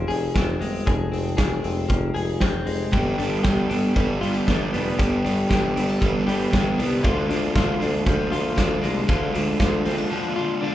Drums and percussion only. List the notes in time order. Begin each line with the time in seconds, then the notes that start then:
0.10 open hi-hat
0.36 kick, snare, closed hi-hat
0.61 open hi-hat
0.87 kick, closed hi-hat
1.13 open hi-hat
1.38 kick, snare, closed hi-hat
1.64 open hi-hat
1.89 kick, closed hi-hat
2.16 open hi-hat
2.40 kick, snare, closed hi-hat
2.67 open hi-hat
2.93 kick, closed hi-hat
3.19 open hi-hat
3.44 kick, snare, closed hi-hat
3.71 open hi-hat
3.96 kick, closed hi-hat
4.23 open hi-hat
4.48 kick, snare, closed hi-hat
4.74 open hi-hat
4.99 kick, closed hi-hat
5.26 open hi-hat
5.51 kick, snare, closed hi-hat
5.77 open hi-hat
6.02 kick, closed hi-hat
6.29 open hi-hat
6.53 kick, snare, closed hi-hat
6.79 open hi-hat
7.04 kick, closed hi-hat
7.31 open hi-hat
7.56 kick, snare, closed hi-hat
7.82 open hi-hat
8.06 kick, closed hi-hat
8.33 open hi-hat
8.58 kick, snare, closed hi-hat
8.84 open hi-hat
9.09 kick, closed hi-hat
9.35 open hi-hat
9.60 kick, snare, closed hi-hat
9.85 open hi-hat